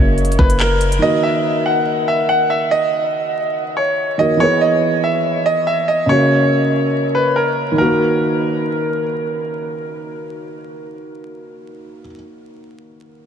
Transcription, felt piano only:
0.00 0.97 C#3 medium
0.00 0.98 A#3 medium
0.00 0.99 F#4 medium
0.00 1.01 A#4 medium
0.99 4.13 D#3 medium
0.99 4.14 A#3 medium
1.03 4.16 F#4 medium
1.03 4.17 A#4 medium
4.18 4.39 D#3 soft
4.18 4.40 A#3 soft
4.18 4.41 F#4 soft
4.18 4.41 A#4 medium
4.37 6.04 E3 medium
4.37 6.05 B3 medium
4.41 6.06 G#4 medium
4.41 6.08 B4 medium
6.06 7.73 C#3 medium
6.06 7.74 A#3 medium
6.10 7.75 F#4 medium
6.10 7.77 A#4 medium
7.71 12.01 D#3 medium
7.76 12.06 A#3 medium
7.81 12.10 F#4 medium
7.85 12.15 A#4 medium

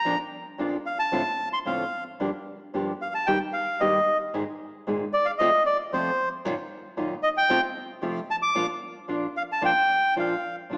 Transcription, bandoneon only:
0.00 0.18 A#5 medium
0.86 0.98 F5 medium
0.99 1.49 A5 medium
1.53 1.59 C6 medium
1.67 2.04 F5 medium
3.02 3.14 F5 medium
3.15 3.28 A5 medium
3.27 3.39 G5 medium
3.53 3.81 F5 medium
3.80 4.17 D#5 medium
5.13 5.27 D5 medium
5.25 5.31 F5 medium
5.38 5.63 D#5 medium
5.66 5.77 D5 medium
5.93 6.29 C5 medium
7.23 7.29 D#5 medium
7.37 7.61 G5 medium
8.31 8.36 A5 medium
8.42 8.67 D6 medium
9.37 9.43 F5 medium
9.52 9.63 A5 medium
9.65 10.14 G5 loud
10.20 10.56 F5 medium

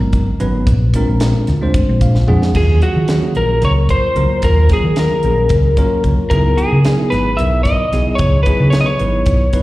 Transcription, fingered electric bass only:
0.00 0.36 G#1 medium
0.41 0.65 G#1 medium
0.67 0.91 A#1 medium
1.08 1.32 A#1 medium
1.48 1.60 D2 medium
1.74 muted fingered electric bass stroke soft
1.89 2.25 A#1 medium
2.29 2.53 F2 medium
2.55 2.79 D#2 medium
2.96 3.20 D#3 medium
3.36 3.60 A#1 medium
3.62 3.87 C#2 medium
4.16 4.28 C#2 medium
4.31 muted fingered electric bass stroke soft
4.42 4.67 D#2 medium
4.84 5.08 D#3 medium
5.24 5.48 A#1 medium
5.50 5.74 C#2 medium
6.04 6.16 C#2 medium
6.18 muted fingered electric bass stroke soft
6.31 6.55 C#2 medium
6.72 6.96 C#3 medium
7.12 7.36 G#1 medium
7.40 7.64 B1 medium
7.93 8.05 B1 medium
8.07 muted fingered electric bass stroke soft
8.19 8.43 C#2 medium
8.60 8.84 C#3 medium
9.01 9.24 G#1 medium
9.26 9.50 B1 medium

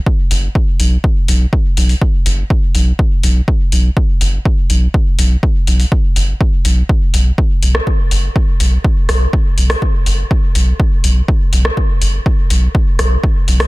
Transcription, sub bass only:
0.31 0.48 F#1 loud
0.80 0.97 B1 medium
1.28 1.46 B1 medium
1.77 1.95 B1 medium
2.26 2.43 F#1 loud
2.75 2.92 B1 medium
3.23 3.41 B1 loud
3.72 3.90 B1 medium
4.21 4.38 F#1 loud
4.70 4.87 B1 loud
5.19 5.36 B1 medium
5.67 5.85 B1 medium
6.16 6.34 F#1 loud
6.65 6.82 B1 loud
7.14 7.31 B1 loud
7.62 7.80 B1 medium
8.11 8.29 F#1 loud
8.60 8.78 B1 medium
9.09 9.26 B1 loud
9.58 9.75 B1 loud
10.06 10.24 F#1 loud
10.55 10.73 B1 loud
11.04 11.21 B1 loud
11.53 11.70 B1 medium
12.02 12.19 F#1 loud
12.50 12.68 B1 medium
12.99 13.17 B1 medium
13.48 13.65 B1 loud

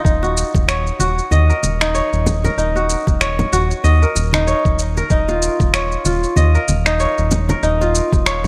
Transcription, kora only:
0.00 0.29 F4 medium
0.00 0.24 A#4 medium
0.04 1.67 D#4 medium
0.23 0.99 F#4 medium
0.68 1.83 C#5 medium
1.00 2.46 F#4 medium
1.31 2.38 D#5 medium
1.49 2.44 A#4 medium
1.81 2.57 D#4 medium
1.95 3.09 C#5 medium
2.44 3.72 A#4 medium
2.58 4.20 D#4 medium
2.76 3.52 F#4 medium
3.21 4.36 C#5 medium
3.53 4.99 F#4 medium
3.84 4.91 D#5 medium
4.03 4.97 A#4 medium
4.34 5.11 D#4 medium
4.47 5.62 C#5 medium
4.97 6.25 A#4 medium
5.11 6.73 D#4 medium
5.29 6.05 F4 medium
5.74 6.89 C#5 medium
6.05 7.57 F4 medium
6.36 7.44 D#5 medium
6.55 7.49 A#4 medium
6.86 7.63 D#4 medium
7.00 8.15 C#5 medium
7.50 8.47 A#4 medium
7.63 8.47 D#4 medium
7.81 8.47 F4 medium
8.26 8.47 C#5 medium

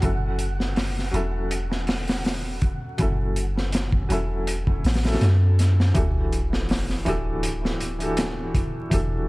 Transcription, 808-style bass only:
0.03 1.10 F#1 medium
1.13 2.78 E1 medium
2.99 4.07 F#1 medium
4.10 4.84 E1 medium
4.84 5.17 A1 loud
5.21 5.92 F#2 medium
5.95 7.03 E1 medium
7.06 8.70 D1 medium
8.91 9.29 E1 loud

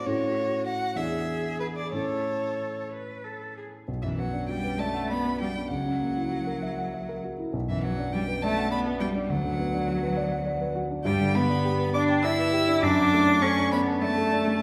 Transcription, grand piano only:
0.00 0.06 A2 soft
0.00 0.11 C4 soft
0.00 0.11 D#4 soft
0.00 0.11 F#4 soft
0.06 0.94 A2 medium
0.06 0.95 C#4 soft
0.06 0.95 E4 soft
0.06 0.95 A4 soft
0.96 1.90 E2 medium
0.96 1.90 D4 soft
0.96 1.91 E4 soft
0.96 1.91 G#4 soft
1.92 3.83 A2 soft
1.92 3.83 C#4 soft
1.92 3.83 E4 soft
1.92 3.83 A4 soft
3.88 5.67 B1 medium
4.03 4.28 F#2 soft
4.18 4.43 B3 soft
4.33 4.58 D4 soft
4.49 4.74 F#4 soft
4.64 4.89 B4 soft
4.79 5.04 D5 medium
4.94 5.19 F#5 soft
5.10 5.34 D5 soft
5.25 5.50 B4 soft
5.40 5.65 F#4 soft
5.55 5.71 D4 soft
5.70 7.49 C#2 medium
5.85 6.10 C#3 soft
6.01 6.26 A#3 soft
6.16 6.41 E4 soft
6.32 6.57 F#4 soft
6.47 6.72 A#4 soft
6.63 6.87 E5 medium
6.78 7.03 F#5 medium
6.94 7.18 E5 soft
7.09 7.33 A#4 soft
7.24 7.48 F#4 soft
7.39 7.54 E4 soft
7.53 9.25 B1 medium
7.68 7.92 F#2 soft
7.83 8.07 B3 soft
7.98 8.22 D4 medium
8.13 8.36 F#4 medium
8.28 8.51 B4 medium
8.42 8.66 D5 medium
8.57 8.80 F#5 medium
8.72 8.95 D5 medium
8.86 9.09 B4 medium
9.01 9.24 F#4 medium
9.15 9.30 D4 medium
9.30 11.01 D2 medium
9.44 9.67 D3 medium
9.59 9.82 B3 medium
9.74 9.97 D4 medium
9.88 10.11 F#4 medium
10.03 10.26 B4 medium
10.17 10.40 D5 medium
10.32 10.55 F#5 medium
10.46 10.70 D5 medium
10.61 10.85 B4 medium
10.75 10.99 F#4 medium
10.90 11.05 D4 medium
11.05 12.79 G2 medium
11.20 11.44 D3 medium
11.34 11.58 B3 medium
11.49 11.73 D4 medium
11.65 11.89 G4 medium
11.79 12.03 B4 medium
11.94 12.18 D5 medium
12.09 12.33 G5 medium
12.24 12.47 D5 medium
12.39 12.62 B4 medium
12.53 12.77 G4 medium
12.68 12.83 D4 medium
12.82 14.57 F#2 medium
12.97 13.21 F#3 medium
13.13 13.37 A3 medium
13.28 13.51 D4 medium
13.43 13.66 A4 medium
13.58 13.81 D4 medium
13.73 13.96 D5 medium
13.87 14.11 A5 medium
14.03 14.26 D5 medium
14.18 14.41 A4 medium
14.33 14.56 D4 medium
14.47 14.62 A3 medium

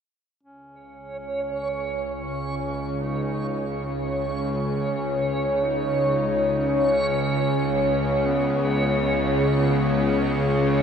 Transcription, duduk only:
0.43 3.03 C#4 medium
3.02 4.07 D#4 loud
4.27 4.34 D#4 medium
4.32 5.65 C#4 medium
5.63 6.95 D#4 loud
6.93 8.26 C#4 medium
8.25 9.29 B3 medium
9.54 10.49 B3 medium

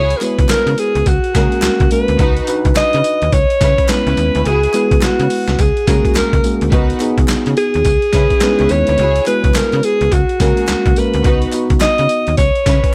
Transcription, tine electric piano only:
0.21 1.06 G#3 medium
0.21 1.06 B3 medium
0.21 1.06 E4 medium
0.21 1.06 F#4 medium
0.21 1.07 B4 medium
1.35 1.87 G#3 medium
1.35 1.87 A#3 medium
1.35 1.87 C#4 medium
1.35 1.87 F#4 medium
1.35 1.87 A#4 loud
1.91 2.17 G#3 medium
1.91 2.17 A#3 medium
1.91 2.17 C#4 medium
1.91 2.18 F#4 medium
1.91 2.18 A#4 medium
2.20 2.46 D#4 medium
2.20 2.46 F#4 medium
2.20 2.46 B4 medium
2.48 2.56 D4 medium
2.48 3.33 F#4 medium
2.48 3.33 B4 loud
2.55 3.36 D#4 medium
3.89 4.46 G#3 medium
3.89 4.46 B3 medium
3.89 4.46 C#4 medium
3.89 4.46 E4 medium
3.89 4.46 B4 loud
4.74 5.59 G#3 medium
4.74 5.59 B3 medium
4.74 5.59 E4 medium
4.74 5.59 F#4 medium
4.74 5.59 B4 medium
5.87 6.39 G#3 medium
5.87 6.40 A#3 medium
5.87 6.40 C#4 medium
5.87 6.40 F#4 medium
5.87 6.40 A#4 medium
6.44 6.70 G#3 medium
6.44 6.70 A#3 medium
6.44 6.70 C#4 medium
6.44 6.70 F#4 medium
6.44 6.70 G#4 medium
6.72 6.98 B3 medium
6.72 6.98 D#4 medium
6.72 6.98 F#4 loud
7.00 7.85 B3 loud
7.00 7.86 D#4 medium
7.00 7.86 G#4 loud
8.42 8.99 G#3 loud
8.42 8.99 B3 medium
8.42 8.99 C#4 loud
8.42 8.50 D#4 medium
8.42 8.99 B4 loud
8.50 9.02 E4 medium
9.27 10.12 G#3 medium
9.27 10.12 B3 medium
9.27 10.12 E4 medium
9.27 10.12 F#4 medium
9.27 10.12 B4 medium
10.40 10.92 G#3 medium
10.40 10.93 A#3 medium
10.40 10.93 C#4 medium
10.40 10.93 F#4 medium
10.40 10.93 A#4 loud
10.97 11.23 G#3 medium
10.97 11.23 A#3 medium
10.97 11.23 C#4 medium
10.97 11.23 F#4 medium
10.97 11.23 A#4 medium
11.25 11.51 B3 medium
11.25 11.51 D#4 medium
11.25 11.52 F#4 medium
11.53 12.38 B3 medium
11.53 12.38 D#4 medium
11.53 12.39 F#4 loud

